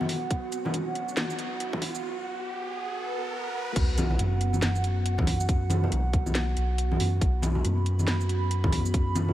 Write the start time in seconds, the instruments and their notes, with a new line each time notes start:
Already playing: analog synth pad B3 F#4 F#5, riser
0.01 high conga
0.09 open hi-hat
0.31 kick, closed hi-hat
0.52 closed hi-hat, shaker
0.65 high conga, low conga
0.74 closed hi-hat
0.95 closed hi-hat
1.09 shaker
1.17 snare, closed hi-hat, high conga
1.30 shaker
1.39 closed hi-hat
1.60 closed hi-hat
1.73 kick, high conga
1.82 kick, open hi-hat
1.95 shaker
2.90 swell
3.76 sub bass B1, analog synth pad B3 F#4 F#5, kick, closed hi-hat, crash, sub drop
3.98 closed hi-hat, high conga, shaker
4.11 low conga
4.19 sub bass F#2, closed hi-hat
4.41 closed hi-hat
4.53 high conga, shaker
4.62 sub bass F#2, snare, closed hi-hat
4.75 shaker
4.84 closed hi-hat
5.06 closed hi-hat
5.18 kick, high conga
5.27 kick, open hi-hat
5.40 shaker
5.49 kick, closed hi-hat
5.70 closed hi-hat, high conga, shaker
5.84 low conga
5.92 sub bass B1, closed hi-hat
6.13 kick, closed hi-hat
6.26 high conga, shaker
6.35 snare, closed hi-hat
6.57 sub bass B1, closed hi-hat
6.78 closed hi-hat
6.92 high conga
7.00 sub bass F#2, open hi-hat
7.21 sub bass B1, analog synth pad B5, kick, closed hi-hat
7.42 closed hi-hat, high conga, shaker
7.55 low conga
7.64 sub bass F#2, closed hi-hat
7.86 closed hi-hat
7.99 high conga, shaker
8.08 sub bass F#2, snare, closed hi-hat
8.21 shaker
8.29 closed hi-hat
8.51 closed hi-hat
8.64 kick, high conga
8.72 kick, open hi-hat
8.85 shaker
8.94 kick, closed hi-hat
9.15 closed hi-hat, high conga, shaker
9.29 low conga